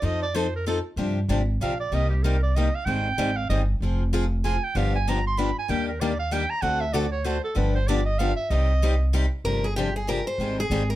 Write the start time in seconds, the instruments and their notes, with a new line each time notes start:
0.02 upright bass F2, steel-string acoustic guitar F3 C4 D#4 A4, clarinet D#5
0.23 clarinet D5
0.34 steel-string acoustic guitar F3 C4 D#4 A4, clarinet C5
0.56 clarinet A#4
0.66 steel-string acoustic guitar F3 C4 D#4 A4, clarinet A4
0.96 upright bass G2, steel-string acoustic guitar C3 F3 C4 D4 G4
1.28 upright bass G#1, steel-string acoustic guitar C3 F3 C4 D4 G4
1.60 upright bass A#1, steel-string acoustic guitar C3 F3 C4 D4 G4, clarinet F5
1.80 clarinet D5
1.92 upright bass C2, steel-string acoustic guitar C3 G3 A#3 D#4 G4, clarinet D#5
2.10 clarinet G4
2.23 steel-string acoustic guitar C3 G3 A#3 D#4 G4, clarinet A#4
2.43 clarinet D5
2.55 steel-string acoustic guitar C3 G3 A#3 D#4 G4, clarinet D#5
2.75 clarinet F5
2.86 upright bass G#1, steel-string acoustic guitar D#3 G3 C4 D#4 G#4, clarinet G5
3.18 upright bass G#1, steel-string acoustic guitar D#3 G3 C4 D#4 G#4
3.36 clarinet F5
3.50 upright bass G1, steel-string acoustic guitar D#3 G3 C4 D#4 G#4, clarinet D#5
3.80 upright bass F1, steel-string acoustic guitar F3 C4 F4 G#4
4.13 steel-string acoustic guitar F3 C4 F4 G#4
4.44 steel-string acoustic guitar F3 C4 F4 G#4, clarinet G#5
4.64 clarinet G5
4.75 upright bass G1, steel-string acoustic guitar D3 F3 B3 D4 G4, clarinet F5
4.95 clarinet G#5
5.07 steel-string acoustic guitar D3 F3 B3 D4 G4, clarinet A#5
5.27 clarinet C6
5.37 steel-string acoustic guitar D3 F3 B3 D4 G4, clarinet B5
5.58 clarinet G#5
5.68 upright bass D#2, steel-string acoustic guitar D#3 G3 A#3 D4 G4, clarinet G5
5.88 clarinet A#4
6.00 steel-string acoustic guitar D#3 G3 A#3 D4 G4, clarinet D5
6.19 clarinet F5
6.31 steel-string acoustic guitar D#3 G3 A#3 D4 G4, clarinet G5
6.50 clarinet A#5
6.62 upright bass D2, steel-string acoustic guitar D3 A3 C4 F#4 A4, clarinet F#5
6.81 clarinet E5
6.93 steel-string acoustic guitar D3 A3 C4 F#4 A4, clarinet D5
7.12 clarinet C#5
7.24 steel-string acoustic guitar D3 A3 C4 F#4 A4, clarinet C5
7.44 clarinet A4
7.55 upright bass G1, steel-string acoustic guitar D3 F3 B3 D4 G4, clarinet B4
7.75 clarinet C5
7.88 steel-string acoustic guitar D3 F3 B3 D4 G4, clarinet D5
8.05 clarinet D#5
8.19 steel-string acoustic guitar D3 F3 B3 D4 G4, clarinet F5
8.36 clarinet E5
8.50 upright bass C2, steel-string acoustic guitar C3 G3 C4 D#4 G4, clarinet D#5
8.82 steel-string acoustic guitar C3 G3 C4 D#4 G4
9.13 steel-string acoustic guitar C3 G3 C4 D#4 G4
9.44 upright bass G1, steel-string acoustic guitar C3 F3 C4 D4 G4 A#4
9.64 steel-string acoustic guitar G#4
9.76 steel-string acoustic guitar C3 F3 C4 D4 G4
9.96 steel-string acoustic guitar G#4
10.07 steel-string acoustic guitar C3 F3 C4 D4 G4 A#4
10.27 steel-string acoustic guitar C5
10.38 upright bass G#1, steel-string acoustic guitar D#3 G3 C4 D#4 G#4
10.60 steel-string acoustic guitar G#4
10.70 upright bass G#1, steel-string acoustic guitar D#3 G3 C4 D#4 G#4
10.90 steel-string acoustic guitar A#4